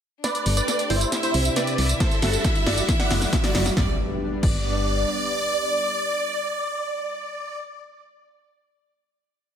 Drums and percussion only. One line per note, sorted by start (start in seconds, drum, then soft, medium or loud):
0.24 snare soft
0.24 closed hi-hat medium
0.24 tambourine soft
0.35 closed hi-hat medium
0.35 tambourine soft
0.46 open hi-hat loud
0.57 closed hi-hat medium
0.57 tambourine medium
0.68 snare medium
0.68 closed hi-hat medium
0.68 tambourine medium
0.79 closed hi-hat medium
0.79 tambourine soft
0.90 open hi-hat medium
1.01 closed hi-hat medium
1.01 tambourine medium
1.12 snare medium
1.12 closed hi-hat medium
1.12 tambourine medium
1.23 closed hi-hat medium
1.23 tambourine soft
1.34 open hi-hat loud
1.45 closed hi-hat medium
1.45 tambourine medium
1.56 snare medium
1.56 closed hi-hat medium
1.56 tambourine soft
1.67 closed hi-hat medium
1.67 tambourine soft
1.78 open hi-hat medium
1.89 closed hi-hat medium
1.89 tambourine medium
2.00 kick loud
2.00 snare medium
2.00 closed hi-hat medium
2.00 tambourine soft
2.11 closed hi-hat medium
2.11 tambourine soft
2.22 snare medium
2.22 open hi-hat loud
2.33 closed hi-hat medium
2.33 tambourine medium
2.44 kick loud
2.44 snare medium
2.44 closed hi-hat medium
2.44 tambourine medium
2.55 closed hi-hat medium
2.55 tambourine soft
2.67 snare medium
2.67 open hi-hat loud
2.78 closed hi-hat medium
2.78 tambourine medium
2.89 kick loud
2.89 snare medium
2.89 closed hi-hat medium
2.89 tambourine medium
3.00 snare medium
3.00 closed hi-hat medium
3.00 tambourine soft
3.11 snare loud
3.11 open hi-hat loud
3.22 snare medium
3.22 closed hi-hat medium
3.22 tambourine medium
3.33 kick loud
3.33 snare loud
3.33 closed hi-hat medium
3.33 tambourine medium
3.44 snare medium
3.44 closed hi-hat medium
3.44 tambourine soft
3.55 snare loud
3.55 open hi-hat loud
3.66 snare medium
3.66 closed hi-hat medium
3.66 tambourine medium
3.77 kick loud
3.77 snare medium
4.43 kick loud
4.43 crash medium